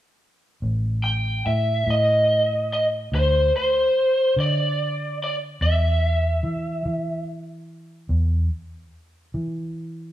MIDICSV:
0, 0, Header, 1, 3, 480
1, 0, Start_track
1, 0, Tempo, 828729
1, 361, Time_signature, 12, 3, 24, 8
1, 5864, End_track
2, 0, Start_track
2, 0, Title_t, "Lead electric guitar"
2, 0, Program_c, 0, 29
2, 601, Note_on_c, 0, 79, 71
2, 825, Note_off_c, 0, 79, 0
2, 848, Note_on_c, 0, 76, 69
2, 1093, Note_off_c, 0, 76, 0
2, 1103, Note_on_c, 0, 75, 69
2, 1576, Note_off_c, 0, 75, 0
2, 1582, Note_on_c, 0, 75, 62
2, 1645, Note_off_c, 0, 75, 0
2, 1825, Note_on_c, 0, 72, 68
2, 2038, Note_off_c, 0, 72, 0
2, 2064, Note_on_c, 0, 72, 70
2, 2511, Note_off_c, 0, 72, 0
2, 2550, Note_on_c, 0, 74, 69
2, 2994, Note_off_c, 0, 74, 0
2, 3034, Note_on_c, 0, 74, 76
2, 3095, Note_off_c, 0, 74, 0
2, 3257, Note_on_c, 0, 76, 67
2, 4186, Note_off_c, 0, 76, 0
2, 5864, End_track
3, 0, Start_track
3, 0, Title_t, "Fingered electric bass"
3, 0, Program_c, 1, 33
3, 360, Note_on_c, 1, 33, 70
3, 819, Note_off_c, 1, 33, 0
3, 846, Note_on_c, 1, 45, 61
3, 1065, Note_off_c, 1, 45, 0
3, 1081, Note_on_c, 1, 45, 75
3, 1780, Note_off_c, 1, 45, 0
3, 1806, Note_on_c, 1, 38, 76
3, 2026, Note_off_c, 1, 38, 0
3, 2528, Note_on_c, 1, 50, 75
3, 3223, Note_off_c, 1, 50, 0
3, 3249, Note_on_c, 1, 40, 75
3, 3703, Note_off_c, 1, 40, 0
3, 3726, Note_on_c, 1, 52, 61
3, 3946, Note_off_c, 1, 52, 0
3, 3970, Note_on_c, 1, 52, 76
3, 4662, Note_off_c, 1, 52, 0
3, 4687, Note_on_c, 1, 40, 73
3, 4905, Note_off_c, 1, 40, 0
3, 5411, Note_on_c, 1, 52, 74
3, 5864, Note_off_c, 1, 52, 0
3, 5864, End_track
0, 0, End_of_file